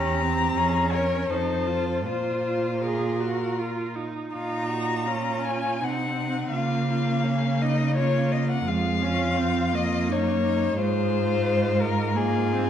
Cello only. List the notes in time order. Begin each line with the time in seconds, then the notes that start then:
Already playing: E2
0.56 F2
1.30 F2
2.05 A#2
4.35 A#2
5.81 C3
6.53 C#3
8.66 F2
10.09 F#2
10.78 G#2